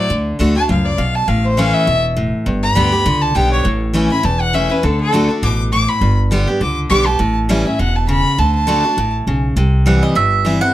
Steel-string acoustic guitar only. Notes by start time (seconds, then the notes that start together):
0.10 D3
0.39 D3 A3 D4 F#4
0.55 D4 F#4
0.69 F#2
0.98 B2
1.28 A2
1.57 E3 A3 C#4 E4
1.87 B2
2.17 A2
2.46 G2
2.75 D3 G3 B3 G4
2.92 B3 G4
3.06 D3
3.35 D3 G3 B3 G4
3.65 A2
3.94 E3 A3 C#4 E4
4.10 C#4 E4
4.23 E2
4.53 E3 A3 C#4 E4
4.70 C#4 E4
4.83 D3
5.13 D3 A3 D4 F#4
5.29 D4 F#4
5.43 B2
5.73 A2
6.01 G2
6.31 D3 G3 B3 G4
6.47 B3 G4
6.61 D3
6.90 D3 G3 B3 G4
7.06 B3 G4
7.19 A2
7.49 E3 G3 C#4 E4
7.65 C#4 E4
7.79 B2
8.09 C#3
8.38 D3
8.67 D3 A3 D4 F#4
8.84 D4 F#4
8.98 A2
9.27 C#3
9.57 C3
9.86 E3 G3 C4 E4
10.15 G2
10.45 E3 G3 C4 E4
10.61 C4 E4